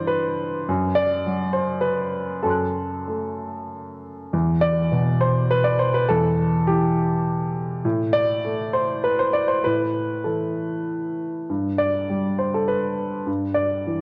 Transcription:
0.00 0.63 G2 medium
0.00 0.68 E3 soft
0.00 0.70 C5 medium
0.00 0.70 D5 medium
0.07 0.67 B4 medium
0.69 2.42 F#2 medium
0.95 1.54 D5 medium
1.26 3.21 F#3 soft
1.53 1.84 C5 medium
1.81 2.44 B4 medium
2.43 4.28 F#2 medium
2.43 3.70 A4 medium
2.43 4.28 A5 soft
2.47 4.30 C6 soft
2.47 4.31 F#6 soft
3.08 4.33 A3 soft
4.33 6.06 E2 medium
4.61 5.21 D5 medium
4.92 6.79 B2 soft
5.21 5.51 C5 medium
5.51 5.66 B4 medium
5.64 5.80 D5 medium
5.79 5.95 C5 medium
5.94 6.09 B4 medium
6.09 7.80 E2 medium
6.09 6.67 A4 medium
6.67 7.85 E3 soft
6.67 7.84 G4 medium
7.85 9.60 A2 medium
8.13 8.73 D5 loud
8.45 10.38 A3 soft
8.74 9.03 C5 medium
9.04 9.19 B4 medium
9.19 9.34 C5 medium
9.33 9.48 D5 medium
9.48 9.63 C5 medium
9.64 11.46 A2 medium
9.64 10.25 B4 medium
10.24 11.49 E3 soft
10.24 10.87 A4 soft
11.50 13.24 G2 medium
11.78 12.38 D5 medium
12.10 13.99 G3 soft
12.38 12.53 C5 medium
12.54 12.68 A4 medium
12.68 13.27 B4 medium
13.26 14.01 G2 medium
13.54 14.01 D5 medium
13.87 14.01 E3 soft

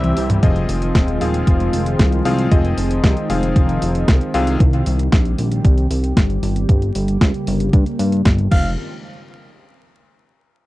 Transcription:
0.00 0.13 C2 loud
0.00 0.38 C3 medium
0.00 0.42 E3 medium
0.00 0.42 G3 medium
0.00 0.38 C4 medium
0.00 0.42 C4 medium
0.00 0.38 E4 medium
0.00 0.38 G4 medium
0.00 0.41 G4 medium
0.00 0.32 E5 loud
0.00 0.38 E5 medium
0.00 closed hi-hat soft
0.00 high tom medium
0.17 0.39 C2 medium
0.17 open hi-hat loud
0.30 closed hi-hat medium
0.30 mid tom medium
0.43 0.65 F1 loud
0.43 6.65 D#3 medium
0.43 1.18 F3 medium
0.43 4.56 G#3 medium
0.43 6.65 C4 medium
0.43 1.18 C4 medium
0.43 2.49 F4 medium
0.43 1.18 F4 medium
0.43 1.18 G#4 medium
0.43 1.18 D#5 medium
0.43 kick loud
0.43 closed hi-hat medium
0.56 closed hi-hat soft
0.69 0.91 F1 loud
0.69 open hi-hat loud
0.82 closed hi-hat medium
0.95 1.17 D#1 medium
0.95 kick loud
0.95 snare loud
0.95 closed hi-hat medium
1.08 closed hi-hat soft
1.21 1.43 D#1 medium
1.21 2.22 F3 medium
1.21 2.22 C4 medium
1.21 2.22 F4 medium
1.21 2.22 G#4 medium
1.21 2.22 F5 medium
1.21 open hi-hat medium
1.34 closed hi-hat medium
1.47 1.69 F1 loud
1.47 kick loud
1.47 closed hi-hat medium
1.60 closed hi-hat soft
1.73 1.96 F1 medium
1.73 open hi-hat loud
1.86 closed hi-hat medium
1.99 2.22 C2 loud
1.99 kick loud
1.99 snare loud
1.99 closed hi-hat medium
2.12 closed hi-hat soft
2.25 2.48 C2 medium
2.25 2.48 F3 loud
2.25 2.48 C4 medium
2.25 2.48 F4 medium
2.25 2.48 G#4 medium
2.25 2.48 F5 loud
2.25 open hi-hat medium
2.39 closed hi-hat medium
2.51 2.74 F1 loud
2.51 3.27 F3 medium
2.51 3.27 C4 medium
2.51 4.58 D#4 medium
2.51 3.27 F4 medium
2.51 3.27 G#4 medium
2.51 3.27 D#5 medium
2.51 kick loud
2.51 closed hi-hat medium
2.65 closed hi-hat soft
2.78 3.00 F1 medium
2.78 open hi-hat loud
2.91 closed hi-hat medium
3.04 3.15 C2 loud
3.04 kick loud
3.04 snare loud
3.04 closed hi-hat medium
3.17 closed hi-hat soft
3.30 3.52 F1 medium
3.30 4.31 F3 medium
3.30 4.31 C4 medium
3.30 4.31 F4 medium
3.30 4.31 G#4 medium
3.30 4.31 F5 medium
3.30 open hi-hat medium
3.43 closed hi-hat medium
3.56 3.78 F1 medium
3.56 kick loud
3.56 closed hi-hat medium
3.69 closed hi-hat soft
3.82 4.04 F1 loud
3.82 open hi-hat loud
3.95 closed hi-hat soft
4.08 4.19 C2 loud
4.08 kick loud
4.08 snare loud
4.08 closed hi-hat medium
4.21 closed hi-hat soft
4.34 4.56 C2 medium
4.34 4.57 C3 loud
4.34 4.57 C4 medium
4.34 4.57 F4 medium
4.34 4.57 G#4 medium
4.34 4.57 F5 loud
4.34 open hi-hat medium
4.47 closed hi-hat medium
4.60 4.83 C2 loud
4.60 8.48 G3 medium
4.60 8.48 G4 medium
4.60 kick loud
4.60 closed hi-hat medium
4.73 closed hi-hat soft
4.86 5.09 C2 loud
4.86 open hi-hat loud
4.99 closed hi-hat medium
5.12 5.35 A#1 medium
5.12 kick loud
5.12 snare loud
5.12 closed hi-hat medium
5.25 closed hi-hat soft
5.38 5.61 A#1 medium
5.38 open hi-hat medium
5.52 closed hi-hat medium
5.65 5.87 C2 loud
5.65 kick loud
5.65 closed hi-hat medium
5.78 closed hi-hat soft
5.91 6.13 C2 medium
5.91 open hi-hat loud
6.04 closed hi-hat medium
6.17 6.39 G1 loud
6.17 kick loud
6.17 snare loud
6.17 closed hi-hat medium
6.30 closed hi-hat soft
6.43 6.65 G1 medium
6.43 open hi-hat medium
6.56 closed hi-hat medium
6.69 6.91 G1 loud
6.69 8.50 C#3 medium
6.69 8.50 A#3 medium
6.69 kick loud
6.69 closed hi-hat soft
6.82 closed hi-hat soft
6.95 7.17 G1 medium
6.95 open hi-hat loud
7.08 closed hi-hat soft
7.21 7.32 C#2 loud
7.21 kick loud
7.21 snare loud
7.21 closed hi-hat soft
7.34 closed hi-hat soft
7.47 7.69 G1 medium
7.47 open hi-hat medium
7.60 closed hi-hat medium
7.73 7.84 G2 medium
7.73 kick loud
7.73 closed hi-hat soft
7.86 closed hi-hat soft
7.99 8.22 G2 medium
7.99 open hi-hat loud
8.12 closed hi-hat soft
8.25 8.48 G1 loud
8.25 kick loud
8.25 snare loud
8.25 closed hi-hat soft
8.38 closed hi-hat soft
8.51 8.76 F1 loud
8.51 8.71 F5 medium
8.51 kick loud
8.51 crash medium

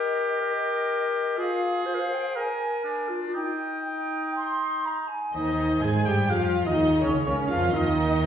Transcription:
0.00 1.35 G4 medium
0.00 0.41 A#4 medium
0.00 0.41 D#5 medium
0.41 1.39 A#4 medium
0.41 1.37 D#5 medium
1.38 1.87 F4 medium
1.38 2.33 G#4 medium
1.38 1.86 F5 medium
1.86 1.96 C5 medium
1.86 2.11 F5 soft
1.95 2.02 A#4 medium
2.00 2.37 C5 medium
2.12 2.36 G5 soft
2.35 2.83 A#4 medium
2.35 3.10 A#4 medium
2.35 3.12 G#5 medium
2.84 3.33 D4 soft
3.09 3.26 F4 medium
3.27 3.37 F4 soft
3.34 5.06 D#4 medium
3.34 4.85 D#4 medium
3.34 3.79 G5 soft
3.85 4.31 G5 soft
4.35 4.85 C6 medium
4.85 5.10 A#5 soft
5.09 5.34 G#5 soft
5.34 5.79 D#2 medium
5.34 5.79 D#3 medium
5.34 5.79 D#4 medium
5.34 6.27 C5 medium
5.34 5.79 D#5 medium
5.34 5.83 D#5 medium
5.82 6.07 G#2 medium
5.82 6.05 G#3 medium
5.82 6.06 G#3 medium
5.82 6.06 G#4 medium
5.82 6.07 G#4 medium
5.82 6.07 G#5 medium
5.82 6.06 G#5 medium
6.05 6.31 G2 medium
6.05 6.30 G3 medium
6.05 6.14 G4 medium
6.05 6.31 G4 medium
6.05 6.32 G5 medium
6.05 6.30 G5 medium
6.30 6.66 F2 medium
6.30 6.65 F3 medium
6.30 6.66 F3 medium
6.30 6.66 F4 medium
6.30 7.28 G#4 medium
6.30 6.66 F5 medium
6.66 7.02 D#2 medium
6.66 7.02 D#3 medium
6.66 7.02 D#4 medium
6.66 7.01 D#5 soft
6.66 7.01 D#5 medium
7.02 7.11 C#2 medium
7.02 7.25 C#3 medium
7.02 7.26 C#3 medium
7.02 7.25 C#4 medium
7.02 7.11 C#4 medium
7.02 7.25 C#5 medium
7.02 7.13 C#5 medium
7.26 7.35 C#2 medium
7.26 7.50 C#3 medium
7.26 7.35 C#3 medium
7.26 7.50 C#4 medium
7.26 7.74 A#4 medium
7.26 7.50 C#5 medium
7.26 7.37 C#5 medium
7.49 7.74 F2 medium
7.49 7.60 F3 medium
7.49 7.74 F3 medium
7.49 7.74 F4 medium
7.49 7.76 F5 medium
7.49 7.74 F5 medium
7.74 8.26 D#2 medium
7.74 8.26 D#3 medium
7.74 8.26 D#4 medium
7.74 8.21 A#4 medium
7.74 8.26 D#5 medium
8.23 8.26 C5 medium

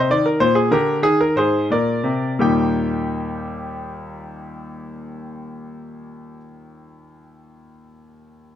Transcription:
0.00 0.10 C3 medium
0.00 0.12 C5 medium
0.10 0.38 D#3 medium
0.10 0.26 D5 medium
0.26 0.40 A#4 medium
0.40 0.69 A#2 medium
0.40 0.55 C5 medium
0.55 0.71 G#4 medium
0.71 1.01 D3 medium
0.71 1.01 G4 medium
0.71 0.98 A#4 medium
1.02 1.33 D#3 medium
1.02 1.19 G#4 medium
1.21 1.36 A#4 medium
1.36 1.68 G#2 medium
1.36 1.68 G#4 medium
1.36 1.65 C5 medium
1.70 2.03 A#2 soft
1.70 2.38 A#4 soft
1.70 2.31 D5 medium
2.04 2.38 C3 soft
2.39 6.36 D#2 soft
2.39 6.37 A#2 soft
2.39 6.36 G3 soft
2.39 6.37 A#3 soft
2.39 6.37 D#4 soft
2.39 6.37 G4 soft
2.39 6.39 G5 medium

